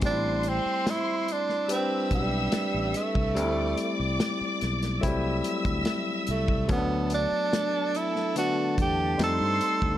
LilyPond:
<<
  \new Staff \with { instrumentName = "String section" } { \time 4/4 \key a \dorian \tempo 4 = 72 <c'' c'''>2 <e'' e'''>2 | <d'' d'''>2 <e'' e'''>2 | <a' a''>2. <c'' c'''>4 | }
  \new Staff \with { instrumentName = "Tenor saxophone" } { \time 4/4 \key a \dorian d'8 c'8 e'8 d'8 c'8 g4 a8~ | a4 r2 r8 a8 | b8 d'4 e'8 fis'8 g'8 a'4 | }
  \new Staff \with { instrumentName = "Tine electric piano" } { \time 4/4 \key a \dorian <g a c' dis' e'>4.~ <g a c' dis' e'>16 r16 <g c' d' b'>4.~ <g c' d' b'>16 r16 | <g a c' d' e'>4.~ <g a c' d' e'>16 r16 <fis g a c' e'>4.~ <fis g a c' e'>16 r16 | <fis a b cis' d'>4.~ <fis a b cis' d'>16 r16 <d a b d'>4 <g a c' ees'>4 | }
  \new Staff \with { instrumentName = "Fingered electric bass" } { \clef bass \time 4/4 \key a \dorian a,,8. r4. r16 b,,8 r16 a,,16 r16 c,16 | d,8 r16 c,16 r8 b,,8 c,8 r16 d,16 r8 c,8 | d,8. r4. r16 e,8 f,16 g,16 r16 d,16 | }
  \new DrumStaff \with { instrumentName = "Drums" } \drummode { \time 4/4 <hh bd>8 hh8 <hh sn>8 hh16 sn16 hh8 <hh bd>8 <hh sn>8 hh16 bd16 | hh8 hh8 <hh sn>8 <hh sn>16 <hh sn>16 <hh bd>8 hh16 <hh bd>16 <hh sn>8 hh16 bd16 | <hh bd>8 hh8 <hh sn>8 hh16 sn16 hh8 <hh bd>8 <hh sn>8 hh16 bd16 | }
>>